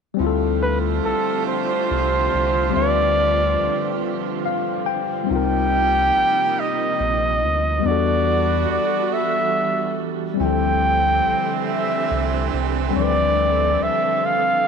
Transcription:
0.14 G3 C4
0.19 D2 D3 F3 A3 C4 D4 E4 F4 G4
0.27 A4
0.63 B4
1.05 C2 A4
1.47 C5
1.91 C2
2.34 C2
2.70 G3 C4
2.74 D2 D5 E5
2.78 F4 B4
3.62 D2
4.46 F5
4.86 G5
5.24 G3 C4
5.29 C2 C3 G3 A#3 D#4 F4 G4 G5
5.36 A#4
6.16 A#1
6.60 D#5
7.00 A#1
7.42 D2
7.80 G3 B3 F#4 A4
7.84 E2 E3 B3 D4 F#4 D5
7.88 F#4 A4
8.70 E2 D5
9.13 E5
10.34 G3 C4
10.39 D2 D3 E3 F3 A3 C4 D4 E4 G4 G5
10.46 A4
11.26 C2
11.69 E5
12.11 C2
12.53 C2
12.90 G3 C4 A4
12.96 D2 F3 D4 D5
13.02 B4
13.81 D2 E5
14.26 F5

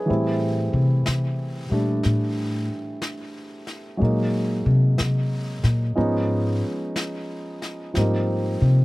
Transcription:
Already playing: G#3 B3 D4 G#4 C#5
0.06 E3 G3 A3 C4, brush sweep
0.10 A2 E4
0.73 C3
1.06 C3, brush sweep, snare
1.70 A#2 G3 A3 D4
2.03 A2, brush sweep, snare
3.02 brush sweep, snare
3.67 snare
3.97 F#3 G#3 A#3, brush sweep
4.02 A#2 D#4
4.66 C3
4.98 C3, brush sweep, snare
5.63 A#2, snare
5.96 G#2 F3 G#3 B3 C#4 D#4, brush sweep
6.96 brush sweep, snare
7.62 snare
7.94 G#2 F3 G3 A#3 C4, brush sweep, snare
7.98 D#4
8.62 C3

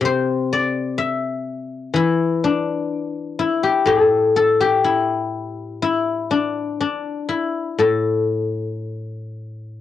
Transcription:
Already playing: E3 A4 D5
0.01 C3
0.05 C5
0.53 D5
0.98 E5
1.94 E3 E4
2.44 D4
3.39 E4
3.63 G4
3.86 A2 A4
4.36 A4
4.61 G4
4.84 E4
5.82 E4
6.31 D4
6.80 D4
7.29 E4
7.79 A2 A4

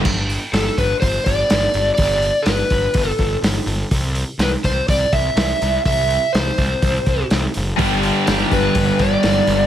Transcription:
0.05 G1, kick, crash
0.30 open hi-hat
0.53 G1 A4, snare, open hi-hat
0.77 G1 B4, kick, open hi-hat
1.01 G1 C5, kick, open hi-hat
1.24 G1 D5, kick, open hi-hat
1.50 G1, snare, open hi-hat
1.74 G1, open hi-hat
1.95 D5, kick, open hi-hat
1.99 G1
2.22 open hi-hat
2.43 G1 B4, snare, open hi-hat
2.70 G1, kick, open hi-hat
2.94 G1, kick, open hi-hat
3.10 A4
3.19 G1, kick, open hi-hat
3.43 G1, snare, open hi-hat
3.66 G1, open hi-hat
3.91 C2, kick, open hi-hat
4.15 open hi-hat
4.39 C2 B4, snare, open hi-hat
4.64 C2 C5, kick, open hi-hat
4.88 C2 D5, kick, open hi-hat
5.12 C2 E5, kick, open hi-hat
5.37 C2, snare, open hi-hat
5.62 C2, open hi-hat
5.85 C2 E5, kick, open hi-hat
6.10 open hi-hat
6.33 C2 C5, snare, open hi-hat
6.58 C2, kick, open hi-hat
6.82 C2, kick, open hi-hat
7.06 C2, kick, open hi-hat
7.30 C2, snare, open hi-hat
7.54 F#1, open hi-hat
7.77 G1 G2 D3 G3 B3 D4 G4, kick, open hi-hat
7.81 B3 D5
8.03 open hi-hat
8.26 G1 G4, snare, open hi-hat
8.51 G1 B4, kick, open hi-hat
8.75 G1, kick, open hi-hat
8.99 G1 D5, kick, open hi-hat
9.23 G1, snare, open hi-hat
9.47 G1, open hi-hat

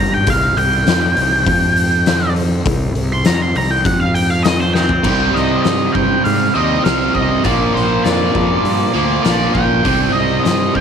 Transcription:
Already playing: G2
0.00 A#5
0.14 G5
0.27 C2 F5, kick, open hi-hat
0.57 C2 G5, open hi-hat
0.87 F2, snare, open hi-hat
1.16 C2, open hi-hat
1.46 F2, kick, open hi-hat
1.76 open hi-hat
2.06 snare, open hi-hat
2.36 open hi-hat
2.65 C2, kick, open hi-hat
2.95 C2, open hi-hat
3.13 C6
3.25 F2 A#5, snare, open hi-hat
3.42 C6
3.55 C2 A#5, open hi-hat
3.71 G5
3.85 F2 F#5, kick, open hi-hat
4.00 F5
4.14 G5, open hi-hat
4.30 F5
4.43 D#5, snare, open hi-hat
4.60 C5
4.73 C5 G5, snare
4.89 floor tom
5.03 C2 C3 G3 C4, kick, crash
5.34 C2 D#5, snare
5.63 G2 D#5, snare, open hi-hat
5.92 G2 G5, kick
6.24 G#2 F5, open hi-hat
6.54 D#2 C3 G3 C4 D#5
6.84 C2 C3 G3 C4 F5, snare, open hi-hat
7.14 C2 D#5, kick
7.44 A#1 A#2 F3 A#3 D5, kick, open hi-hat
7.74 A#1 C5, snare
8.04 F2 D5, snare, open hi-hat
8.35 F2, kick
8.64 G2, open hi-hat
8.94 D2 A#2 F3 A#3
9.23 A#1 A#2 F3 A#3 D5, snare, open hi-hat
9.54 A#1 G5, kick
9.83 C2 C3 G3 C4, kick, open hi-hat
10.12 C2 D#5
10.44 G2 D#5, snare, open hi-hat
10.75 G2 G5, kick

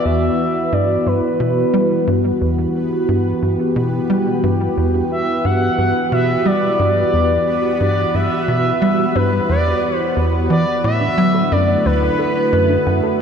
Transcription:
Already playing: E3 B3 F#4
0.05 E2 B3 B4 E5
0.72 G2 D5
1.06 G2 B4
1.40 B2 G4
1.73 G3
2.07 G2
2.41 E2
3.08 G2
3.42 G2
3.76 B2
4.10 G3
4.43 G2
4.77 E2
5.12 E5
5.45 G2 F#5
5.78 G2
6.12 B2 E5
6.45 G3 D5
6.79 G2
7.13 E2
7.80 G2 D5
8.14 G2 E5
8.48 B2
8.82 G3
9.15 G2 B4
9.49 E2 D5
9.97 C5
10.16 E2
10.50 E3 D5
10.84 A2 D3 D5 E5
11.01 D4
11.14 A3
11.18 F#3 F#5
11.27 E4
11.35 A4
11.52 F#2 D5
11.68 D5
11.85 D2 D4 B4
12.02 F#5
12.19 A4
12.52 F#2 D5
12.70 D4
12.86 F#2 F#5
13.04 A4

